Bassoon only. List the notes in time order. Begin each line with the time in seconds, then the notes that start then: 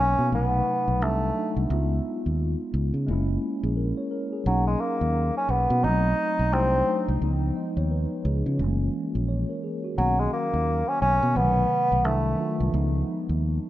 0.00 C#4
0.35 B3
1.03 A3
4.47 F#3
4.67 G#3
4.81 A#3
5.37 C#4
5.50 B3
5.84 D#4
6.53 C4
9.98 F#3
10.19 G#3
10.33 A#3
10.88 C#4
11.02 C#4
11.36 B3
12.05 A3